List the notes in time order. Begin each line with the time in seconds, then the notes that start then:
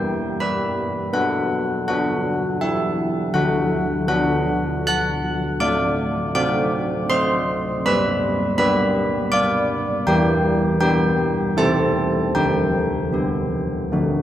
Already playing: B3 E4 G4 G5
0.40 B4 B5
1.13 B3 F#4 F#5
1.88 B3 D4 F#4 F#5
2.61 E4 E5
3.34 D3 F#4 F#5
4.08 B3 D4 F#4 F#5
4.87 F#5 F#6
5.60 A3 D5 D6
6.35 C4 F#4 D5 D6
7.10 C5 C6
7.86 G3 B4 B5
8.58 B3 G4 B4 B5
9.32 D5 D6
10.07 E3 G4 G5
10.81 B3 G4 G5
11.57 C4 E4 G4 A4 A5
12.35 D3 G4 G5
13.13 B3 G4
13.92 D3 A3 F#4